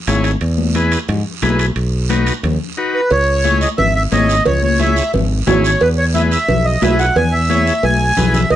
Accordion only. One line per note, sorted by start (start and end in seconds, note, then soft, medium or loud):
2.94 3.10 B4 medium
3.12 3.58 C#5 medium
3.62 3.69 D#5 medium
3.78 3.94 E5 loud
3.95 4.03 E5 loud
4.12 4.44 D#5 medium
4.47 4.62 C#5 medium
4.64 4.81 C#5 medium
4.81 5.12 E5 medium
5.65 5.82 C#5 medium
5.81 5.89 B4 medium
5.98 6.05 C#5 medium
6.14 6.22 E5 medium
6.31 6.66 E5 medium
6.65 6.83 D#5 medium
6.83 7.00 E5 medium
6.99 7.17 F#5 medium
7.16 7.33 G#5 medium
7.32 7.85 E5 medium
7.84 8.36 G#5 loud
8.34 8.50 E5 medium
8.51 8.56 D#5 medium